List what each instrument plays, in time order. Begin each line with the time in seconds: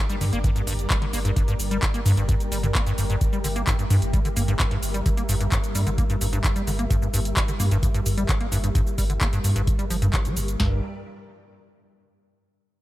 Already playing: string machine G3 G4 A#4 D5
0.10 acid bass G3, closed hi-hat, cabasa
0.21 sub bass G2, acid bass D3, mid tom, open hi-hat, cabasa
0.33 sub bass G1, acid bass A#3, closed hi-hat, cabasa
0.44 acid bass G2, kick, closed hi-hat, cabasa
0.56 acid bass G2, closed hi-hat, cabasa
0.67 sub bass G1, acid bass G2, mid tom, open hi-hat, cabasa
0.79 closed hi-hat, cabasa
0.90 acid bass G3, kick, clap, closed hi-hat, cabasa
1.02 acid bass D3, closed hi-hat
1.13 sub bass G1, acid bass A#3, open hi-hat, cabasa
1.25 acid bass G2, closed hi-hat, cabasa
1.36 acid bass G2, kick, closed hi-hat, cabasa
1.48 acid bass G2, closed hi-hat, cabasa
1.59 sub bass G1, open hi-hat, cabasa
1.71 acid bass G3, closed hi-hat, cabasa
1.82 acid bass D3, kick, clap, closed hi-hat, cabasa
1.94 acid bass A#3, closed hi-hat, cabasa
2.05 acid bass G2, sub bass G2, mid tom, open hi-hat, cabasa
2.17 sub bass G1, acid bass G2, closed hi-hat, cabasa
2.29 acid bass G2, kick, closed hi-hat, cabasa
2.40 closed hi-hat, cabasa
2.52 sub bass G1, acid bass G3, open hi-hat, cabasa
2.63 acid bass D3, closed hi-hat, mid tom, cabasa
2.75 acid bass A#3, kick, clap, closed hi-hat, cabasa
2.86 acid bass G2, closed hi-hat, cabasa
2.98 sub bass G1, acid bass G2, open hi-hat, cabasa
3.10 acid bass G2, closed hi-hat, cabasa
3.21 string machine E5, kick, closed hi-hat, cabasa
3.33 acid bass G3, cabasa
3.44 sub bass G1, acid bass D3, open hi-hat, cabasa
3.56 acid bass A#3, closed hi-hat, cabasa
3.67 acid bass G2, kick, clap, closed hi-hat, cabasa
3.79 acid bass G2, closed hi-hat, cabasa
3.90 acid bass G2, sub bass G2, mid tom, open hi-hat, cabasa
4.02 sub bass G1, closed hi-hat, cabasa
4.13 acid bass G3, kick, closed hi-hat, cabasa
4.25 acid bass D3, closed hi-hat, cabasa
4.36 sub bass G1, acid bass A#3, mid tom, open hi-hat, cabasa
4.48 acid bass G2, closed hi-hat, cabasa
4.59 acid bass G2, kick, clap, closed hi-hat, cabasa
4.71 acid bass G2, closed hi-hat
4.83 sub bass G1, open hi-hat, cabasa
4.94 acid bass G3, closed hi-hat, cabasa
5.06 acid bass D3, kick, closed hi-hat, cabasa
5.17 acid bass A#3, closed hi-hat, cabasa
5.29 sub bass G1, acid bass G2, open hi-hat, cabasa
5.41 acid bass G2, closed hi-hat, cabasa
5.52 acid bass G2, kick, clap, closed hi-hat, cabasa
5.64 closed hi-hat, cabasa
5.75 sub bass G2, acid bass G3, mid tom, open hi-hat, cabasa
5.87 sub bass G1, acid bass D3, closed hi-hat, cabasa
5.98 acid bass A#3, kick, closed hi-hat, cabasa
6.10 acid bass G2, closed hi-hat, cabasa
6.21 sub bass G1, acid bass G2, open hi-hat, cabasa
6.33 acid bass G2, closed hi-hat, mid tom, cabasa
6.44 kick, clap, closed hi-hat, cabasa
6.56 acid bass G3, closed hi-hat, cabasa
6.67 sub bass G1, acid bass D3, open hi-hat, cabasa
6.79 acid bass A#3, closed hi-hat, cabasa
6.90 acid bass G2, kick, closed hi-hat, cabasa
7.02 acid bass G2, cabasa
7.13 sub bass G1, acid bass G2, open hi-hat, cabasa
7.25 closed hi-hat, cabasa
7.37 acid bass G3, kick, clap, closed hi-hat, cabasa
7.48 acid bass D3, closed hi-hat, cabasa
7.60 sub bass G2, acid bass A#3, mid tom, open hi-hat, cabasa
7.71 sub bass G1, acid bass G2, closed hi-hat, cabasa
7.83 acid bass G2, kick, closed hi-hat, cabasa
7.94 acid bass G2, closed hi-hat, cabasa
8.06 sub bass G1, mid tom, open hi-hat, cabasa
8.17 acid bass G3, closed hi-hat, cabasa
8.29 acid bass D3, kick, clap, closed hi-hat, cabasa
8.41 acid bass A#3, closed hi-hat
8.52 sub bass G1, acid bass G2, open hi-hat, cabasa
8.64 acid bass G2, closed hi-hat, cabasa
8.75 acid bass G2, kick, closed hi-hat, cabasa
8.87 cabasa
8.98 sub bass G1, acid bass G3, kick, open hi-hat, cabasa
9.10 acid bass D3, closed hi-hat, cabasa
9.21 acid bass A#3, kick, clap, closed hi-hat, cabasa
9.33 acid bass G2, closed hi-hat, cabasa
9.44 acid bass G2, sub bass G2, mid tom, open hi-hat, cabasa
9.56 sub bass G1, acid bass G2, closed hi-hat, cabasa
9.67 kick, closed hi-hat, cabasa
9.79 acid bass G3, closed hi-hat, cabasa
9.90 sub bass G1, acid bass F3, open hi-hat, cabasa
10.02 acid bass G2, closed hi-hat, mid tom, cabasa
10.13 acid bass G1, kick, clap, closed hi-hat, cabasa
10.25 acid bass G3, closed hi-hat, cabasa
10.37 sub bass G1, acid bass G2, open hi-hat, cabasa
10.48 closed hi-hat, cabasa
10.60 sub bass G1, acid bass G2, string machine G3 G4 A#4 D5, snare, floor tom